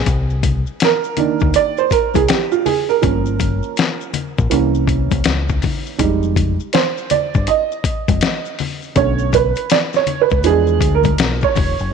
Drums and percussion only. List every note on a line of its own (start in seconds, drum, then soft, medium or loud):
0.06 kick loud
0.06 closed hi-hat medium
0.06 maracas medium
0.30 maracas soft
0.43 kick medium
0.43 closed hi-hat medium
0.43 high conga soft
0.43 low conga medium
0.43 maracas soft
0.66 maracas soft
0.80 snare loud
0.80 closed hi-hat medium
0.80 maracas medium
1.04 maracas soft
1.17 closed hi-hat medium
1.17 low conga medium
1.17 maracas soft
1.40 kick medium
1.40 maracas soft
1.54 closed hi-hat medium
1.54 maracas medium
1.77 maracas soft
1.90 kick medium
1.90 closed hi-hat medium
1.90 maracas soft
2.14 kick medium
2.14 closed hi-hat medium
2.14 high conga medium
2.14 maracas soft
2.28 snare loud
2.28 closed hi-hat medium
2.28 maracas medium
2.52 maracas medium
2.66 open hi-hat soft
2.66 low conga medium
2.66 maracas soft
2.90 maracas soft
3.02 kick loud
3.02 closed hi-hat medium
3.02 maracas medium
3.26 maracas soft
3.39 kick medium
3.39 closed hi-hat medium
3.39 high conga soft
3.39 low conga medium
3.39 maracas soft
3.63 maracas soft
3.77 snare loud
3.77 closed hi-hat medium
3.77 maracas medium
4.01 maracas soft
4.13 closed hi-hat medium
4.13 low conga medium
4.13 maracas soft
4.38 kick medium
4.38 maracas soft
4.51 closed hi-hat medium
4.51 maracas medium
4.75 maracas soft
4.87 kick medium
4.87 closed hi-hat medium
4.87 maracas soft
5.11 kick medium
5.11 closed hi-hat medium
5.11 high conga medium
5.11 maracas soft
5.24 snare loud
5.24 closed hi-hat medium
5.24 maracas medium
5.49 kick medium
5.49 maracas soft
5.62 kick medium
5.62 open hi-hat soft
5.62 low conga medium
5.62 maracas soft
5.86 maracas medium
5.99 kick loud
5.99 closed hi-hat medium
5.99 maracas medium
6.23 maracas soft
6.36 kick medium
6.36 closed hi-hat medium
6.36 high conga soft
6.36 low conga medium
6.36 maracas soft
6.60 maracas soft
6.73 snare loud
6.73 closed hi-hat medium
6.73 maracas medium
6.98 maracas soft
7.10 closed hi-hat medium
7.10 low conga medium
7.10 maracas soft
7.34 kick medium
7.34 maracas soft
7.47 closed hi-hat medium
7.47 maracas medium
7.72 maracas soft
7.84 kick medium
7.84 closed hi-hat medium
7.84 maracas soft
8.08 kick medium
8.08 closed hi-hat medium
8.08 high conga medium
8.08 maracas medium
8.21 snare loud
8.21 closed hi-hat medium
8.21 maracas medium
8.45 maracas soft
8.59 open hi-hat soft
8.59 low conga medium
8.59 maracas soft
8.82 maracas soft
8.96 kick loud
8.96 closed hi-hat medium
8.96 maracas medium
9.19 maracas soft
9.33 kick medium
9.33 closed hi-hat medium
9.33 high conga soft
9.33 low conga medium
9.33 maracas soft
9.55 closed hi-hat medium
9.55 maracas soft
9.70 snare loud
9.70 closed hi-hat medium
9.70 maracas medium
9.93 snare soft
9.93 maracas soft
10.07 closed hi-hat medium
10.07 low conga medium
10.07 maracas soft
10.30 kick medium
10.30 maracas soft
10.43 closed hi-hat medium
10.43 maracas medium
10.67 maracas soft
10.81 kick medium
10.81 closed hi-hat medium
10.81 maracas soft
11.04 kick medium
11.04 closed hi-hat medium
11.04 high conga medium
11.04 maracas medium
11.18 snare loud
11.18 closed hi-hat medium
11.18 maracas medium
11.41 kick medium
11.41 maracas soft
11.55 kick medium
11.55 open hi-hat soft
11.55 low conga medium
11.55 maracas medium
11.79 maracas soft